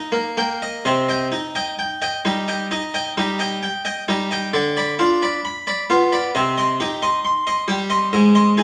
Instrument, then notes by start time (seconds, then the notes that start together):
harpsichord
Already playing: D#4
0.12 A#3
0.37 A#3 G5
0.62 D#5
0.85 C3 D#5
1.09 D#5 G5
1.32 D#4
1.55 D#5 G5
1.79 G5
2.02 D#5 G5
2.25 G3 D#4
2.48 D#5 G5
2.71 D#4 D#5
2.94 D#5 G5
3.17 G3 D#4
3.39 D#5 G5
3.63 G5
3.85 D#5 G5
4.08 G3 D#4
4.31 D#5 G5
4.53 D3 D5
4.77 D5 B5
4.99 D4 F4
5.22 D5 B5
5.45 B5
5.67 D5 B5
5.90 B3 F4
6.12 D5 B5
6.35 C3 D#5
6.58 D#5 C6
6.80 D#4 G4
7.02 D#5 C6
7.25 C6
7.47 D#5 C6
7.68 G3 G4
7.90 D#5 C6
8.13 G#2 D#5
8.35 D#5 C6
8.57 D#4 G#4